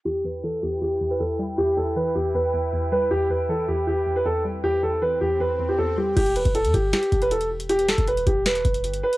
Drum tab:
CC |----------------|----------------|----------------|----------------|
HH |----------------|----------------|----------------|----------------|
SD |----------------|----------------|----------------|----------------|
BD |----------------|----------------|----------------|----------------|

CC |x---------------|----------------|
HH |xxxxxxx-xxxxxx-x|xxxxxxx-xxxxxx-x|
SD |--------o-------|--o-----o-------|
BD |o--o--o---o-----|---o--o---o-----|